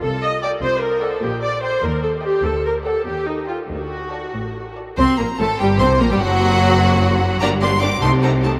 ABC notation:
X:1
M:6/8
L:1/16
Q:3/8=98
K:Gm
V:1 name="Violin section"
z4 a2 z4 a2 | z4 b2 z4 c'2 | z4 a2 z4 c'2 | z4 a2 z4 a2 |
c'2 b2 a2 g2 c'2 b g | ^f12 | b2 c'2 d'2 c'2 b2 a2 |]
V:2 name="Violin section"
z4 [eg]2 z4 [d^f]2 | z4 [dg]2 z4 [eg]2 | z4 [d^f]2 z4 g2 | z4 [da]2 z4 [da]2 |
c2 B2 A2 G2 c2 B G | ^F12 | [Gd]2 [Gd]2 [Gd]2 [Ac]2 [Ac]2 [Ac]2 |]
V:3 name="Viola section"
A2 e2 d2 c2 B2 A2 | G2 d2 c2 B2 A2 G2 | A2 B2 A2 G2 E2 F2 | ^F8- F2 z2 |
C2 B,2 A,2 G,2 C2 B, G, | ^F,12 | [B,D]2 [B,D]2 [B,D]2 [A,E]2 [A,E]2 [A,E]2 |]
V:4 name="Cello section" clef=bass
C,6 C,6 | B,,6 E,,6 | D,,6 E,,6 | D,,6 A,,6 |
C,2 B,,2 A,,2 G,,2 C,2 B,, G,, | ^F,,12 | G,,6 C,6 |]
V:5 name="Double bass section" clef=bass
C,,6 C,,6 | B,,,6 E,,6 | D,,6 E,,6 | D,,6 A,,,6 |
C,,2 B,,,2 A,,,2 G,,,2 C,,2 B,,, z | ^F,,,12 | G,,,6 C,,6 |]